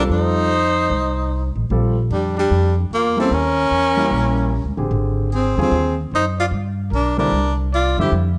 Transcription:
Already playing: grand piano G3 C4 F4 A4
0.10 upright bass F2, tenor saxophone D#4, trumpet C5
0.90 upright bass C2
1.56 upright bass A1
1.70 upright bass A#1, grand piano G3 C4 F4 A4
2.10 upright bass F2, tenor saxophone G3, trumpet D4
2.37 tenor saxophone G3, trumpet D4
2.51 upright bass F2
2.91 upright bass E2, tenor saxophone A#3, trumpet F4
3.17 grand piano G3 A#3 C#4 E4, tenor saxophone C4, trumpet A4
3.31 upright bass D#2, tenor saxophone C#4, trumpet A#4
3.71 upright bass E2
3.97 grand piano G3 A#3 C#4 E4
4.11 upright bass A#1
4.64 upright bass C#2
4.77 upright bass A1, grand piano D3 C4 G4 G#4
4.91 upright bass G#1
5.32 tenor saxophone C4, trumpet G#4
5.57 upright bass D#2, grand piano D3 G3 C4 F4, trumpet G#4
5.62 tenor saxophone C4
5.71 upright bass D#2
6.11 upright bass F#2, tenor saxophone D#4, trumpet C5
6.39 tenor saxophone F4, trumpet D5
6.51 upright bass G2
6.91 upright bass B1, tenor saxophone D4, trumpet A#4
7.18 grand piano D3 G3 C4 E4, tenor saxophone D4, trumpet A#4
7.32 upright bass C2
7.73 tenor saxophone F4, trumpet D5
7.98 upright bass F#2, grand piano D3 G3 C4 E4, tenor saxophone G4, trumpet E5
8.12 upright bass F2

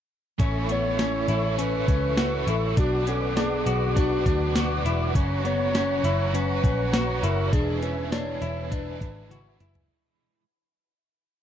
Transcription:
0.38 picked electric bass A1, overdriven electric guitar A2 E3 A3 C#4 E4, clean electric guitar C#4, tonewheel organ A4 C#5 E5 C#6, kick, closed hi-hat
0.69 clean electric guitar B3, soft synth lead C#5, closed hi-hat
0.99 clean electric guitar C#4, snare, closed hi-hat
1.27 picked electric bass A1, overdriven electric guitar A3 C#4 E4, clean electric guitar E4, closed hi-hat
1.57 overdriven electric guitar E3 A3 C#4 E4, clean electric guitar C#4, soft synth lead B4, closed hi-hat
1.88 picked electric bass C#2, clean electric guitar C#4, kick, closed hi-hat
2.17 overdriven electric guitar E3 A3 C#4 E4, clean electric guitar F#4, snare, closed hi-hat
2.47 picked electric bass A1, clean electric guitar E4, soft synth lead A4, closed hi-hat
2.75 picked electric bass B1, overdriven electric guitar B2 F#3 B3, clean electric guitar D4, soft synth lead F#4, tonewheel organ B4 D5 F#5 D6, kick, closed hi-hat
2.80 overdriven electric guitar D4 F#4
3.07 clean electric guitar C#4, soft synth lead A4, closed hi-hat
3.36 clean electric guitar D4, soft synth lead G#4, snare, closed hi-hat
3.66 picked electric bass B1, clean electric guitar F#4, closed hi-hat
3.95 overdriven electric guitar F#3 B3 D4 F#4, clean electric guitar D4, soft synth lead F#4, kick, closed hi-hat
4.26 picked electric bass D2, clean electric guitar D4, kick, closed hi-hat
4.54 overdriven electric guitar F#3 B3 D4 F#4, clean electric guitar F#4, snare, closed hi-hat
4.85 picked electric bass E1, clean electric guitar E4, closed hi-hat
5.14 picked electric bass F#1, overdriven electric guitar F#2 C#3 F#3 A#3 C#4 F#4, clean electric guitar C#4, tonewheel organ C#5 A#5 C#6, kick, closed hi-hat
5.45 clean electric guitar B3, soft synth lead C#5, closed hi-hat
5.75 clean electric guitar C#4, snare, closed hi-hat
6.03 picked electric bass F#1, overdriven electric guitar F#3 A#3 C#4 F#4, clean electric guitar E4, closed hi-hat
6.33 overdriven electric guitar F#3 C#4, clean electric guitar C#4, soft synth lead B4, closed hi-hat
6.37 overdriven electric guitar F#4
6.64 picked electric bass A#1, clean electric guitar C#4, kick, closed hi-hat
6.92 overdriven electric guitar F#3 A#3 C#4 F#4, clean electric guitar F#4, snare, closed hi-hat
7.23 picked electric bass F#1, clean electric guitar E4, soft synth lead A#4, closed hi-hat
7.50 picked electric bass E1, overdriven electric guitar E2 B2 E3, clean electric guitar D4, soft synth lead G#4, tonewheel organ B4 E5 G#5, kick, closed hi-hat
7.54 overdriven electric guitar G#3 D4 E4
7.82 clean electric guitar C#4, soft synth lead B4, closed hi-hat
8.12 clean electric guitar D4, soft synth lead C#5, snare, closed hi-hat
8.42 picked electric bass E1, clean electric guitar E4, closed hi-hat
8.70 overdriven electric guitar E3 G#3 D4 E4, clean electric guitar D4, soft synth lead B4, kick, closed hi-hat
9.01 picked electric bass G#1, clean electric guitar D4, kick, closed hi-hat
9.29 overdriven electric guitar E3 G#3 D4 E4, clean electric guitar F#4, closed hi-hat, high tom
9.60 picked electric bass F#1, clean electric guitar E4, closed hi-hat, mid tom
9.75 floor tom

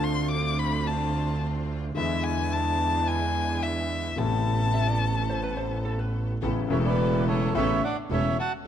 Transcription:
Already playing: double bass D2, grand piano D2 D3 A3 C4 F4, string section C4 D4 F4
0.04 violin C6
0.31 violin D6
0.59 violin B5
0.87 violin A5
1.95 double bass E2, grand piano E2 D3 E3 G#3 B3, string section G#3 D4 E4, violin E5
1.99 grand piano E4
2.24 violin G#5
2.53 violin A5
3.07 violin G#5
3.63 violin E5
4.16 grand piano A1 A2 C3 A3 B3, double bass A1, string section B3 A4, violin A5
4.20 grand piano E4
4.74 hollow-body jazz guitar E5
4.87 hollow-body jazz guitar D5
5.02 hollow-body jazz guitar C5
5.30 hollow-body jazz guitar C5
5.44 hollow-body jazz guitar B4
5.57 hollow-body jazz guitar C5
5.85 hollow-body jazz guitar A4
5.99 hollow-body jazz guitar B4
6.42 grand piano A1 A2 C#3 A3 B3 E4, double bass A1, string section B3 C#4 A4
6.68 grand piano E1 E2 C#3 A3 B3, double bass E1, string section C#3 B3 A4, violin C#4, bandoneon C#5 E5
6.73 grand piano E4
6.86 violin B3, bandoneon B4 D5
7.28 violin A3, bandoneon A4 C#5
7.54 double bass A1, grand piano A1 A2 C#3 A3 B3 E4, string section B3 C#4 A4, violin C#4, bandoneon C#5 E5
7.84 violin D4, bandoneon D5 F#5
8.10 double bass E1, grand piano E1 E2 C#3 A3 B3 E4, string section B3 C#4 A4, violin C#4, bandoneon C#5 E5
8.39 violin F#4, bandoneon F#5 A5

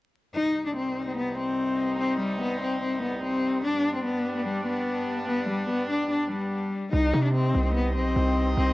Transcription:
0.35 brass ensemble C2 C3 G3 D#4, cello D#4
0.66 cello D4
0.76 cello C4
1.07 cello C4
1.17 cello B3
1.38 cello C4
2.00 cello C4
2.20 cello G3
2.41 cello B3
2.62 cello C4
2.82 cello C4
3.02 cello B3
3.23 cello C4
3.64 brass ensemble G2 G3 B3 D4, cello D4
3.95 cello C4
4.05 cello B3
4.36 cello B3
4.47 cello G3
4.67 cello B3
5.29 cello B3
5.49 cello G3
5.69 cello B3
5.90 cello D4
6.10 cello D4
6.31 cello G3
6.93 808-style bass C2, brass ensemble C4 D#4 G4 D#5, cello D#4
7.13 808-style bass C3
7.24 cello D4
7.34 cello C4
7.55 808-style bass C2
7.65 cello C4
7.75 cello B3
7.95 808-style bass B1, cello C4
8.16 808-style bass C2
8.57 808-style bass C2, cello C4

